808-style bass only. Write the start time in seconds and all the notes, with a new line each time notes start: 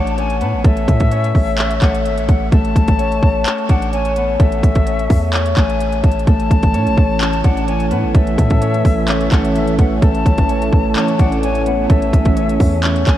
Already playing: A1
0.41 A2
0.54 A1
0.65 A1
0.88 A2
1.35 A1
1.82 A1
2.05 G#1
2.18 A1
2.29 A1
2.52 A1
2.76 A1
3.23 A1
3.69 A1
4.40 A1
4.63 A1
5.10 E2
5.57 A1
6.04 A1
6.27 A1
6.51 A1
6.74 A2
6.87 A1
6.97 A1
7.44 A1
7.91 A2
8.04 A1
8.15 A1
8.38 A2
8.85 A1
9.32 A1
9.55 G#1
9.68 A1
9.79 A1
10.02 A1
10.26 A1
10.73 A1
11.19 A1
11.90 A1
12.13 A1
12.60 E2
13.07 A1